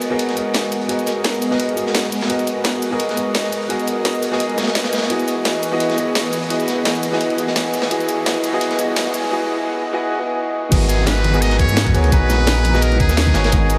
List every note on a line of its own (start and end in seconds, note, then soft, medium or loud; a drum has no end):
0.00 5.06 G#3 medium
0.00 0.10 B3 medium
0.00 5.06 B3 medium
0.00 0.10 F#4 medium
0.00 9.28 F#4 medium
0.00 0.11 G#4 medium
0.00 0.11 A#4 medium
0.00 5.06 A#4 medium
0.00 0.12 D#5 medium
0.00 7.87 D#5 medium
0.00 closed hi-hat medium
0.00 shaker medium
0.10 0.33 B3 medium
0.10 0.34 F#4 medium
0.10 0.35 G#4 medium
0.10 0.35 A#4 medium
0.10 0.35 D#5 loud
0.19 closed hi-hat medium
0.29 snare soft
0.29 closed hi-hat soft
0.34 0.86 B3 medium
0.34 0.87 F#4 medium
0.34 0.87 G#4 medium
0.34 0.88 A#4 medium
0.34 closed hi-hat medium
0.34 shaker medium
0.39 0.88 D#5 medium
0.54 snare loud
0.54 closed hi-hat medium
0.63 snare soft
0.72 closed hi-hat medium
0.72 shaker medium
0.81 closed hi-hat soft
0.87 1.48 B3 medium
0.87 1.49 F#4 medium
0.87 1.49 G#4 medium
0.87 1.50 A#4 medium
0.87 closed hi-hat medium
0.91 1.50 D#5 medium
0.99 closed hi-hat soft
0.99 shaker soft
1.06 snare soft
1.06 closed hi-hat medium
1.06 shaker medium
1.24 snare loud
1.24 closed hi-hat medium
1.34 closed hi-hat soft
1.34 shaker soft
1.42 closed hi-hat medium
1.42 shaker medium
1.50 1.73 B3 medium
1.50 1.74 F#4 medium
1.50 1.75 G#4 medium
1.50 1.75 A#4 medium
1.50 1.76 D#5 loud
1.50 snare soft
1.59 closed hi-hat medium
1.69 closed hi-hat soft
1.75 2.26 B3 medium
1.75 2.27 F#4 medium
1.75 2.28 G#4 medium
1.75 2.28 A#4 medium
1.75 closed hi-hat medium
1.75 shaker medium
1.79 2.29 D#5 medium
1.87 snare medium
1.94 snare loud
1.94 closed hi-hat medium
2.03 snare soft
2.12 closed hi-hat medium
2.12 open hi-hat medium
2.12 shaker medium
2.21 snare loud
2.21 closed hi-hat medium
2.28 2.88 B3 medium
2.28 2.89 F#4 medium
2.28 2.90 G#4 medium
2.28 2.90 A#4 medium
2.28 closed hi-hat medium
2.32 2.91 D#5 medium
2.39 closed hi-hat soft
2.39 shaker soft
2.47 closed hi-hat medium
2.47 shaker medium
2.64 snare loud
2.64 closed hi-hat medium
2.82 closed hi-hat medium
2.82 shaker medium
2.91 3.14 B3 loud
2.91 3.15 F#4 medium
2.91 3.16 G#4 medium
2.91 3.16 A#4 medium
2.91 3.16 D#5 loud
2.99 closed hi-hat medium
3.09 snare soft
3.09 closed hi-hat soft
3.16 3.66 B3 medium
3.16 3.68 F#4 medium
3.16 3.68 G#4 medium
3.16 3.69 A#4 medium
3.16 3.69 D#5 medium
3.16 closed hi-hat medium
3.16 shaker medium
3.34 snare loud
3.34 closed hi-hat medium
3.44 snare soft
3.52 closed hi-hat medium
3.52 shaker medium
3.62 closed hi-hat soft
3.68 4.29 B3 medium
3.68 4.29 F#4 medium
3.68 4.30 G#4 medium
3.68 4.30 A#4 medium
3.68 closed hi-hat medium
3.72 4.31 D#5 medium
3.79 closed hi-hat soft
3.79 shaker soft
3.87 closed hi-hat medium
3.87 shaker medium
4.05 snare loud
4.05 closed hi-hat medium
4.14 shaker soft
4.23 closed hi-hat medium
4.23 shaker medium
4.31 4.54 B3 medium
4.31 4.55 F#4 medium
4.31 4.56 G#4 medium
4.31 4.56 A#4 medium
4.31 4.56 D#5 loud
4.31 snare medium
4.40 closed hi-hat medium
4.50 closed hi-hat soft
4.56 5.07 B3 medium
4.56 5.08 F#4 medium
4.56 5.09 G#4 medium
4.56 5.09 A#4 medium
4.56 snare medium
4.56 closed hi-hat medium
4.56 shaker medium
4.60 5.10 D#5 medium
4.60 snare medium
4.60 closed hi-hat medium
4.67 snare loud
4.67 closed hi-hat medium
4.75 snare loud
4.75 closed hi-hat medium
4.84 snare loud
4.84 closed hi-hat medium
4.93 snare medium
4.93 closed hi-hat medium
4.93 shaker medium
4.98 snare medium
4.98 closed hi-hat medium
5.02 snare medium
5.02 closed hi-hat medium
5.08 9.27 E3 medium
5.08 5.69 B3 medium
5.08 5.70 E4 medium
5.08 5.70 F#4 medium
5.08 9.28 G#4 medium
5.08 5.71 G#4 medium
5.08 9.28 B4 medium
5.08 closed hi-hat medium
5.08 riser medium
5.13 5.71 D#5 medium
5.20 closed hi-hat soft
5.20 shaker soft
5.28 closed hi-hat medium
5.28 shaker medium
5.45 snare loud
5.45 closed hi-hat medium
5.62 closed hi-hat medium
5.62 shaker medium
5.71 5.95 B3 loud
5.71 5.96 E4 medium
5.71 5.96 F#4 medium
5.71 5.96 G#4 medium
5.71 5.97 D#5 loud
5.80 closed hi-hat medium
5.90 snare soft
5.90 closed hi-hat soft
5.96 6.47 B3 medium
5.96 6.48 E4 medium
5.96 6.49 F#4 medium
5.96 6.49 G#4 medium
5.96 closed hi-hat medium
5.96 shaker medium
6.00 6.50 D#5 medium
6.15 snare loud
6.15 closed hi-hat medium
6.25 snare soft
6.33 closed hi-hat medium
6.33 shaker medium
6.43 closed hi-hat soft
6.48 7.09 B3 medium
6.48 7.10 E4 medium
6.48 7.10 F#4 medium
6.48 7.11 G#4 medium
6.48 closed hi-hat medium
6.52 7.11 D#5 medium
6.60 closed hi-hat soft
6.60 shaker soft
6.68 snare soft
6.68 closed hi-hat medium
6.68 shaker medium
6.85 snare loud
6.85 closed hi-hat medium
6.95 closed hi-hat soft
6.95 shaker soft
7.03 closed hi-hat medium
7.03 shaker medium
7.12 7.35 B3 loud
7.12 7.36 E4 medium
7.12 7.36 F#4 medium
7.12 7.37 G#4 medium
7.12 7.37 D#5 loud
7.12 snare medium
7.21 closed hi-hat medium
7.30 closed hi-hat soft
7.36 7.88 B3 medium
7.36 7.89 E4 medium
7.36 7.89 F#4 medium
7.36 7.90 G#4 medium
7.36 closed hi-hat medium
7.36 shaker medium
7.40 7.90 D#5 medium
7.47 snare soft
7.56 snare loud
7.56 closed hi-hat medium
7.66 snare soft
7.74 closed hi-hat medium
7.74 open hi-hat medium
7.74 shaker medium
7.82 snare loud
7.82 closed hi-hat medium
7.89 8.50 B3 medium
7.89 8.50 E4 medium
7.89 9.30 E4 medium
7.89 8.51 F#4 medium
7.89 8.52 G#4 medium
7.89 closed hi-hat medium
7.93 8.52 D#5 medium
8.00 closed hi-hat soft
8.00 shaker soft
8.09 closed hi-hat medium
8.09 shaker medium
8.26 snare loud
8.26 closed hi-hat medium
8.44 closed hi-hat medium
8.44 shaker medium
8.52 8.75 B3 loud
8.52 8.77 E4 medium
8.52 8.77 F#4 medium
8.52 8.77 G#4 medium
8.52 8.77 D#5 loud
8.61 closed hi-hat medium
8.71 snare soft
8.71 closed hi-hat soft
8.77 9.28 B3 medium
8.77 9.29 E4 medium
8.77 9.30 F#4 medium
8.77 9.30 G#4 medium
8.77 closed hi-hat medium
8.77 shaker medium
8.81 9.31 D#5 medium
8.96 snare loud
8.96 closed hi-hat medium
9.05 snare soft
9.14 closed hi-hat medium
9.14 shaker medium
9.29 9.90 B3 medium
9.29 9.91 E4 medium
9.29 9.91 F#4 medium
9.29 9.92 G#4 medium
9.34 9.92 D#5 loud
9.92 10.16 B3 loud
9.92 10.17 E4 medium
9.92 10.17 F#4 medium
9.92 10.17 G#4 medium
9.92 10.18 D#5 loud
10.17 10.68 B3 medium
10.17 10.69 E4 medium
10.17 10.69 F#4 medium
10.17 10.70 G#4 medium
10.21 10.71 D#5 medium
10.70 11.61 G#1 loud
10.70 11.31 B3 medium
10.70 13.78 B3 medium
10.70 13.78 D#4 medium
10.70 11.31 F#4 medium
10.70 13.78 F#4 medium
10.70 11.32 G#4 medium
10.70 11.32 A#4 medium
10.70 13.78 A#5 loud
10.70 kick loud
10.70 closed hi-hat medium
10.70 crash loud
10.70 downlifter medium
10.70 high conga medium
10.70 shaker medium
10.74 11.33 D#5 medium
10.81 high bongo soft
10.89 11.08 G#4 medium
10.89 closed hi-hat medium
10.89 shaker medium
10.99 high conga medium
11.07 11.43 B4 loud
11.07 snare loud
11.07 closed hi-hat loud
11.07 closed hi-hat medium
11.07 high bongo medium
11.07 shaker medium
11.24 closed hi-hat medium
11.24 high conga loud
11.33 11.57 B3 loud
11.33 11.57 F#4 medium
11.33 11.58 G#4 medium
11.33 11.58 A#4 medium
11.33 11.58 D#5 loud
11.33 shaker soft
11.42 11.59 D#5 loud
11.42 closed hi-hat loud
11.42 closed hi-hat medium
11.42 high bongo medium
11.42 shaker medium
11.51 snare soft
11.51 closed hi-hat soft
11.58 11.96 G#2 medium
11.58 11.92 C#5 loud
11.58 kick medium
11.58 closed hi-hat medium
11.58 high conga medium
11.58 shaker soft
11.69 high bongo medium
11.69 shaker medium
11.77 snare loud
11.77 closed hi-hat loud
11.77 closed hi-hat medium
11.77 shaker medium
11.86 kick loud
11.86 snare soft
11.86 high conga medium
11.94 12.23 C#2 loud
11.94 12.03 B3 loud
11.94 12.03 F#4 medium
11.94 12.03 G#4 medium
11.94 12.04 A#4 medium
11.94 12.04 C#5 loud
11.94 closed hi-hat medium
11.94 shaker soft
12.04 closed hi-hat soft
12.04 high bongo medium
12.10 12.71 B3 medium
12.10 12.71 F#4 medium
12.10 12.72 G#4 medium
12.10 12.84 B4 loud
12.10 12.72 A#5 medium
12.10 kick loud
12.10 closed hi-hat loud
12.10 closed hi-hat medium
12.10 high conga loud
12.10 shaker medium
12.14 12.73 D#5 loud
12.22 13.01 A#1 medium
12.29 snare soft
12.29 closed hi-hat medium
12.29 high bongo medium
12.29 shaker medium
12.39 high conga medium
12.47 snare loud
12.47 closed hi-hat medium
12.47 shaker soft
12.57 closed hi-hat soft
12.64 closed hi-hat medium
12.64 open hi-hat medium
12.64 high bongo medium
12.64 high conga medium
12.73 12.97 B3 loud
12.73 12.98 F#4 medium
12.73 12.98 G#4 medium
12.73 12.98 A#4 medium
12.73 12.98 D#5 loud
12.73 snare medium
12.73 shaker soft
12.82 13.00 A#4 loud
12.82 closed hi-hat medium
12.82 closed hi-hat loud
12.82 shaker medium
12.92 closed hi-hat soft
12.92 high bongo medium
13.00 13.34 D#2 medium
13.00 13.78 G#4 medium
13.00 kick loud
13.00 closed hi-hat medium
13.00 high conga medium
13.00 shaker soft
13.09 snare medium
13.09 shaker medium
13.17 snare loud
13.17 closed hi-hat medium
13.17 closed hi-hat loud
13.17 shaker medium
13.26 kick medium
13.26 snare soft
13.26 high bongo medium
13.26 high conga medium
13.34 13.51 G#1 medium
13.34 13.43 B3 loud
13.34 13.43 F#4 medium
13.34 13.44 G#4 medium
13.34 13.44 A#4 medium
13.34 13.44 C#5 loud
13.34 snare loud
13.34 closed hi-hat medium
13.34 shaker soft
13.44 snare loud
13.44 closed hi-hat medium
13.44 closed hi-hat soft
13.50 13.78 G#1 loud
13.50 13.78 B3 medium
13.50 13.78 F#4 medium
13.50 13.78 G#4 medium
13.50 13.78 A#4 medium
13.50 kick loud
13.50 closed hi-hat medium
13.50 closed hi-hat loud
13.50 high bongo medium
13.50 high conga medium
13.50 shaker soft
13.54 13.78 D#5 loud
13.70 closed hi-hat medium
13.70 shaker medium